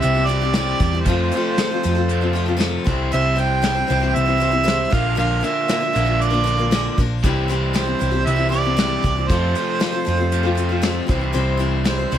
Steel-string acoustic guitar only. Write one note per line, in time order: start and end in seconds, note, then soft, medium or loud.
0.00 0.16 C4 soft
0.00 0.14 E4 soft
0.00 0.13 G4 medium
0.14 0.27 C4 soft
0.14 0.28 E4 soft
0.14 0.28 G4 soft
0.27 0.41 G3 medium
0.27 0.41 C4 medium
0.27 0.42 E4 medium
0.27 0.40 G4 medium
0.42 0.55 C4 soft
0.42 0.55 E4 soft
0.42 0.54 G4 medium
0.55 0.81 C3 medium
0.55 0.79 G3 medium
0.55 0.80 C4 medium
0.55 0.81 E4 medium
0.55 0.81 G4 medium
0.80 0.93 G3 medium
0.80 0.94 C4 medium
0.80 0.93 E4 medium
0.80 0.92 G4 medium
0.93 1.07 C4 soft
0.93 1.07 E4 soft
0.93 1.06 G4 soft
1.07 1.32 F3 medium
1.07 1.33 C4 medium
1.07 1.33 F4 medium
1.07 1.33 A4 medium
1.34 1.58 F3 medium
1.34 1.57 C4 medium
1.34 1.59 F4 medium
1.34 1.59 A4 medium
1.59 1.71 F3 medium
1.59 1.71 C4 medium
1.59 1.71 F4 medium
1.59 1.70 A4 medium
1.71 1.83 C4 soft
1.71 1.84 F4 soft
1.71 1.84 A4 soft
1.83 1.96 F3 medium
1.83 1.97 C4 medium
1.83 1.95 F4 medium
1.83 1.94 A4 medium
1.95 2.22 C4 soft
1.95 2.21 F4 soft
1.95 2.20 A4 medium
2.21 2.33 C4 medium
2.21 2.34 F4 soft
2.21 2.34 A4 medium
2.33 2.47 F3 medium
2.33 2.47 C4 medium
2.33 2.47 F4 medium
2.33 2.44 A4 medium
2.46 2.56 C4 soft
2.46 2.57 F4 medium
2.46 2.58 A4 medium
2.57 2.84 F3 medium
2.57 2.84 C4 medium
2.57 2.85 F4 loud
2.57 2.86 A4 medium
2.84 3.11 G3 medium
2.84 3.12 C4 medium
2.84 3.12 E4 medium
2.84 3.13 C5 medium
3.12 3.37 C3 medium
3.12 3.34 G3 medium
3.12 3.35 C4 medium
3.12 3.37 E4 medium
3.12 3.38 C5 medium
3.36 3.61 G3 medium
3.36 3.61 C4 medium
3.36 3.62 E4 medium
3.36 3.63 C5 medium
3.62 3.75 C3 medium
3.62 3.76 G3 medium
3.62 3.76 C4 medium
3.62 3.76 E4 medium
3.62 3.73 C5 medium
3.75 3.89 E4 soft
3.75 3.88 C5 medium
3.79 3.87 C4 soft
3.87 4.01 G3 medium
3.87 4.01 C4 medium
3.87 4.01 E4 medium
3.87 3.99 C5 medium
4.00 4.28 C4 soft
4.00 4.26 E4 soft
4.00 4.24 C5 soft
4.25 4.39 E4 medium
4.25 4.39 C5 medium
4.30 4.39 C4 soft
4.38 4.52 G3 medium
4.38 4.53 C4 medium
4.38 4.51 E4 medium
4.38 4.50 C5 medium
4.51 4.63 C4 soft
4.51 4.64 E4 soft
4.51 4.64 C5 medium
4.63 4.91 C3 medium
4.63 4.90 G3 medium
4.63 4.91 C4 medium
4.63 4.91 E4 medium
4.63 4.92 C5 medium
4.90 5.16 F3 medium
4.90 5.16 A#3 medium
4.90 5.16 D4 medium
4.90 5.16 A#4 medium
5.15 5.42 A#2 medium
5.15 5.43 D3 medium
5.15 5.40 F3 medium
5.15 5.41 A#3 medium
5.15 5.43 D4 medium
5.15 5.43 A#4 medium
5.41 5.68 F3 medium
5.41 5.69 A#3 medium
5.41 5.69 D4 medium
5.45 5.70 A#4 medium
5.68 5.82 A#2 medium
5.68 5.82 D3 medium
5.68 5.82 F3 medium
5.68 5.82 A#3 medium
5.68 5.80 D4 medium
5.68 5.79 A#4 medium
5.80 5.92 F3 soft
5.80 5.94 A#3 soft
5.80 5.94 D4 soft
5.80 5.94 A#4 soft
5.93 6.07 F3 medium
5.93 6.06 A#3 medium
5.93 6.05 D4 medium
5.93 6.03 A#4 medium
6.05 6.33 F3 soft
6.05 6.32 A#3 soft
6.05 6.31 D4 soft
6.05 6.29 A#4 soft
6.30 6.42 F3 soft
6.30 6.43 A#3 medium
6.30 6.44 D4 soft
6.30 6.45 A#4 medium
6.44 6.58 F3 medium
6.44 6.58 A#3 medium
6.44 6.57 D4 medium
6.44 6.55 A#4 medium
6.57 6.71 A#3 soft
6.57 6.71 D4 soft
6.57 6.71 A#4 soft
6.61 6.71 F3 soft
6.71 6.97 A#2 medium
6.71 6.98 D3 medium
6.71 6.97 F3 medium
6.71 6.98 A#3 medium
6.71 6.98 D4 medium
6.71 6.99 A#4 medium
6.98 7.23 F3 medium
6.98 7.24 A#3 medium
6.98 7.24 D4 medium
6.98 7.25 A#4 medium
7.24 7.49 C3 medium
7.24 7.47 G3 medium
7.24 7.48 C4 medium
7.24 7.49 E4 medium
7.24 7.50 G4 medium
7.48 7.73 G3 medium
7.48 7.73 C4 medium
7.48 7.74 E4 medium
7.48 7.74 G4 medium
7.73 7.87 C3 medium
7.73 7.87 G3 medium
7.73 7.87 C4 medium
7.73 7.86 E4 medium
7.73 7.85 G4 medium
7.86 7.99 C4 soft
7.86 8.00 E4 soft
7.86 8.00 G4 soft
7.99 8.13 G3 medium
7.99 8.13 C4 medium
7.99 8.12 E4 medium
7.99 8.10 G4 medium
8.11 8.38 C4 soft
8.11 8.37 E4 soft
8.11 8.35 G4 soft
8.36 8.49 C4 soft
8.36 8.51 E4 soft
8.36 8.51 G4 medium
8.49 8.63 G3 medium
8.49 8.64 C4 medium
8.49 8.64 E4 medium
8.49 8.62 G4 medium
8.63 8.77 C4 soft
8.63 8.77 E4 medium
8.63 8.77 G4 soft
8.77 9.03 C3 medium
8.77 9.01 G3 medium
8.77 9.03 C4 medium
8.77 9.04 E4 medium
8.77 9.04 G4 medium
9.03 9.16 G3 medium
9.03 9.17 C4 medium
9.03 9.17 E4 medium
9.03 9.15 G4 medium
9.16 9.29 C4 soft
9.16 9.30 E4 soft
9.16 9.29 G4 soft
9.29 9.54 F3 medium
9.29 9.55 C4 medium
9.29 9.56 F4 medium
9.29 9.56 A4 medium
9.55 9.79 F3 soft
9.55 9.79 C4 medium
9.55 9.80 F4 medium
9.55 9.81 A4 medium
9.80 9.93 F3 medium
9.80 9.93 C4 medium
9.80 9.92 F4 medium
9.80 9.91 A4 medium
9.92 10.05 C4 soft
9.92 10.06 F4 medium
9.92 10.06 A4 medium
10.05 10.18 F3 medium
10.05 10.19 C4 medium
10.05 10.17 F4 medium
10.05 10.16 A4 medium
10.17 10.46 C4 soft
10.17 10.44 F4 soft
10.17 10.42 A4 medium
10.43 10.57 F4 medium
10.43 10.57 A4 medium
10.47 10.56 C4 soft
10.55 10.69 F3 medium
10.55 10.70 C4 medium
10.55 10.69 F4 medium
10.55 10.68 A4 medium
10.69 10.81 C4 soft
10.69 10.83 F4 medium
10.69 10.83 A4 medium
10.82 11.06 F3 medium
10.82 11.07 C4 medium
10.82 11.09 F4 loud
10.82 11.09 A4 medium
11.07 11.21 G3 medium
11.07 11.21 C4 medium
11.07 11.20 E4 medium
11.07 11.18 C5 medium
11.19 11.32 C4 soft
11.19 11.33 E4 soft
11.19 11.33 C5 soft
11.32 11.59 C3 medium
11.32 11.56 G3 medium
11.32 11.58 C4 medium
11.32 11.59 E4 medium
11.32 11.59 C5 medium
11.57 11.84 G3 medium
11.57 11.85 C4 medium
11.57 11.85 E4 medium
11.57 11.86 C5 medium
11.84 11.98 C3 medium
11.84 11.99 G3 medium
11.84 11.99 C4 medium
11.84 11.99 E4 medium
11.84 11.97 C5 medium
11.98 12.11 C4 soft
11.98 12.11 E4 soft
11.98 12.11 C5 medium
12.11 12.18 G3 medium
12.11 12.18 C4 medium
12.11 12.18 E4 medium
12.11 12.18 C5 medium